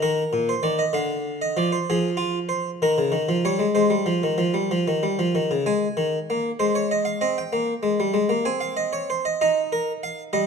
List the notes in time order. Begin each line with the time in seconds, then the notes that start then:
0.02 D#3 A#4
0.33 A#2
0.49 C5
0.63 D#3 D5
0.79 D#5
0.93 D3 F5
1.42 D#5
1.57 F3 D5
1.72 C5
1.90 F3 G#4
2.17 F4
2.49 C5
2.82 D#3 A#4
2.98 C#3
3.12 D#3
3.29 F3
3.45 G3 C#5
3.59 G#3
3.75 G#3 C5
3.90 G3
4.06 F3
4.23 D#3
4.38 F3
4.54 G3
4.71 F3
4.88 D#3
5.03 G3
5.19 F3
5.35 D#3
5.51 C#3
5.66 G#3 G#5
5.97 D#3
6.30 A#3
6.59 G#3 C5
6.75 C#5
6.91 D#5
7.05 F5
7.21 C4 D#5
7.38 G5
7.53 A#3
7.83 G#3
8.00 G3
8.14 G#3
8.29 A#3
8.45 C4 G#5
8.61 F5
8.77 D#5
8.93 C#5
9.10 C5
9.25 D#5
9.41 D#4 D#5
9.72 A#4
10.03 F5
10.33 G3 D#5